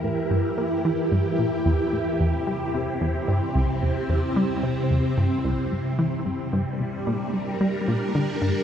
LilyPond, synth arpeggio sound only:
\new Staff \with { instrumentName = "Synth arpeggio sound" } { \clef bass \time 4/4 \key c \mixolydian \tempo 4 = 111 a,8 g,8 bes8 e8 g,8 bes,8 e,8 a,8 | e,8 g8 c8 e,8 g,8 c,8 e,8 e,8 | g8 c8 e,8 g,8 c,8 g,8 e8 g,8 | g,8 c8 bes,8 g8 g8 bes,8 d8 g,8 | }